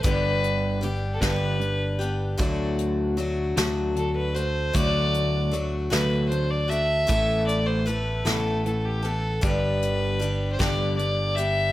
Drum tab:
HH |xxxxxx|xxxxxx|xxxxxx|xxxxxx|
SD |---o--|---o--|---o--|---o--|
BD |o--o--|o-----|o-----|o-----|

HH |xxxxxx|
SD |---o--|
BD |o--o--|